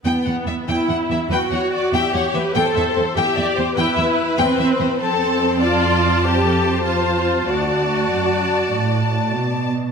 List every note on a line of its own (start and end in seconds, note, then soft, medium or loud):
0.05 0.13 E2 soft
0.05 0.65 B3 soft
0.05 0.25 G5 soft
0.26 0.34 E2 soft
0.26 0.34 F#5 soft
0.47 0.55 E2 soft
0.47 0.55 E5 soft
0.68 0.76 E2 soft
0.68 1.30 E4 soft
0.68 0.88 G5 soft
0.89 0.97 E2 soft
0.89 0.97 F#5 soft
1.10 1.18 E2 soft
1.10 1.18 E5 soft
1.30 1.38 E2 soft
1.30 1.92 F#4 medium
1.30 1.39 B4 soft
1.30 1.50 G5 soft
1.51 1.59 E2 soft
1.51 1.72 C#5 soft
1.51 1.59 F#5 soft
1.73 1.93 D5 soft
1.93 2.01 E2 soft
1.93 2.55 G4 medium
1.93 2.14 E5 soft
1.93 2.12 G5 soft
2.14 2.22 E2 soft
2.14 2.35 C#5 soft
2.14 2.22 F#5 soft
2.34 2.42 E2 soft
2.34 2.55 B4 soft
2.34 2.43 E5 soft
2.55 2.64 E2 soft
2.55 3.15 A4 medium
2.55 3.17 C5 soft
2.55 2.74 G5 medium
2.76 2.84 E2 soft
2.76 2.84 E5 soft
2.97 3.05 E2 soft
2.97 3.05 C5 soft
3.17 3.25 E2 medium
3.17 3.77 G4 medium
3.17 3.37 E5 medium
3.17 3.36 G5 medium
3.36 3.45 E2 soft
3.36 3.57 D5 soft
3.36 3.46 E5 soft
3.57 3.66 E2 soft
3.57 3.78 C5 soft
3.57 3.66 C5 soft
3.77 3.86 E2 medium
3.77 4.38 E4 medium
3.77 4.97 B4 medium
3.77 3.97 G5 medium
3.97 4.06 E2 soft
3.97 4.05 E5 soft
4.38 4.46 E2 medium
4.38 4.99 C4 medium
4.38 4.57 G5 medium
4.58 4.66 E2 soft
4.58 4.68 E5 medium
4.79 4.87 E2 soft
4.79 4.88 C5 soft
4.99 7.43 F2 soft
4.99 5.61 C4 medium
4.99 5.61 A4 medium
4.99 5.58 A5 soft
5.61 6.23 F4 medium
5.61 6.22 D5 medium
5.61 6.82 A5 soft
6.24 6.85 G4 medium
6.24 6.44 C5 soft
6.44 6.64 A4 soft
6.65 7.47 C5 soft
6.84 7.46 F4 medium
6.84 7.45 A5 soft
7.46 8.04 D2 soft
7.46 9.35 F#4 medium
7.46 9.67 D5 soft
7.46 9.73 A5 soft
8.09 8.68 F#2 soft
8.72 9.35 A2 soft
9.35 9.92 B2 soft